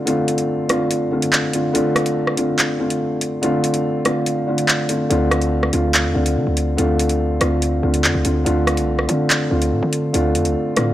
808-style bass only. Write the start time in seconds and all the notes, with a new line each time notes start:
5.10 D2
5.73 D2
6.05 E2
6.15 D2
6.36 D3
6.47 D2
6.78 D2
7.41 D2
7.83 D2
8.04 F2
8.15 D2
8.25 D2
8.46 D2
8.78 C2
9.09 D3
9.51 D2
9.72 A2
9.83 D3
10.14 D2
10.35 F2
10.46 D2
10.77 A2